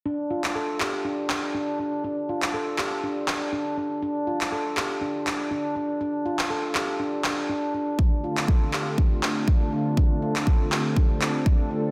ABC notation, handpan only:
X:1
M:4/4
L:1/16
Q:"Swing 16ths" 1/4=121
K:Dm
V:1 name="Handpan"
D z F2 A2 G2 D2 D2 D2 D2 | D z F2 A2 G2 D2 D2 D2 D2 | D z F2 A2 G2 D2 D2 D2 D2 | D z F2 A2 G2 D2 D2 D2 D2 |
z2 F2 A2 G2 D2 D2 D2 D2 | D z F2 A2 G2 D2 D2 z2 D2 |]